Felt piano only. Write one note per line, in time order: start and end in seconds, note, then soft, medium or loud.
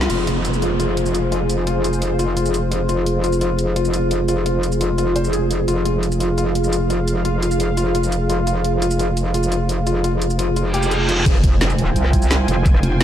0.10 0.25 F4 medium
0.27 0.42 F4 medium
0.62 0.77 F4 medium
0.80 0.94 F4 medium
1.14 1.29 F4 medium
1.32 1.47 F4 medium
1.67 1.82 F4 medium
1.84 1.99 F4 medium
2.19 2.34 F4 medium
2.37 2.51 F4 medium
2.71 2.86 F4 medium
2.89 3.04 F4 medium
3.24 3.39 F4 medium
3.41 3.56 F4 medium
3.76 3.91 F4 medium
3.94 4.08 F4 medium
4.29 4.43 F4 medium
4.46 4.61 F4 medium
4.81 4.96 F4 medium
4.98 5.13 F4 medium
5.16 5.31 C5 medium
5.33 5.39 G#4 medium
5.68 5.83 F4 medium
5.85 5.91 F4 medium
6.20 6.35 F4 medium
6.38 6.44 F4 medium
6.73 6.88 F4 medium
6.90 6.96 F4 medium
7.25 7.40 F4 medium
7.42 7.48 F4 medium
7.77 7.92 F4 medium
7.95 8.01 F4 medium
8.30 8.45 F4 medium
8.47 8.53 F4 medium
8.82 8.97 F4 medium
8.99 9.05 F4 medium
9.34 9.49 F4 medium
9.52 9.58 F4 medium
9.87 10.01 F4 medium
10.04 10.10 F4 medium
10.39 10.54 F4 medium
10.56 10.62 F4 medium
10.74 10.89 G4 loud
10.91 10.97 G#4 medium
11.09 11.24 F4 medium